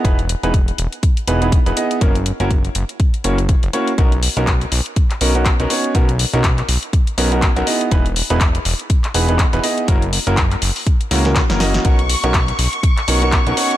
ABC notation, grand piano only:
X:1
M:4/4
L:1/16
Q:"Swing 16ths" 1/4=122
K:B
V:1 name="Grand piano"
[B,DEGB] z2 [B,DEGB] z6 [B,DEGB] [B,DEGB] z [B,DEGB] [B,DEGd]2 | [A,CEFA] z2 [A,CEFA] z6 [A,CEFc] z3 [A,CEFc] z | [B,CDFA] z2 [B,CDFA] z6 [B,CDFA] [B,CDFA] z [B,CDFA] [B,CDFc]2 | [B,CDFA] z2 [B,CDFA] z6 [B,CDFA] [B,CDFA] z [B,CDFA] [B,DEGd]2 |
[B,DEGB] z2 [B,DEGB] z6 [B,DEGB] [B,DEGB] z [B,DEGB] [B,DEGd]2 | [A,CEFA] z2 [A,CEFA] z6 [A,CEFA] [A,CEFA] z [A,CEFA] [A,CEFd]2 | [B,CDFA] z2 [B,CDFA] z6 [B,CDFA] [B,CDFA] z [B,CDFA] [B,CDFc]2 |]